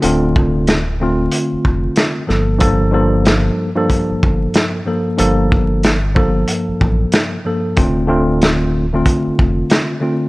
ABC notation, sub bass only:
X:1
M:4/4
L:1/16
Q:"Swing 16ths" 1/4=93
K:Dm
V:1 name="Sub bass" clef=bass
D,,,8 z F,,, F,,,2 z2 G,,,2- | G,,,8 z G,,, G,,,2 z4 | G,,,8 z A,,, A,,,2 z4 | D,,,8 z F,,, F,,,2 z4 |]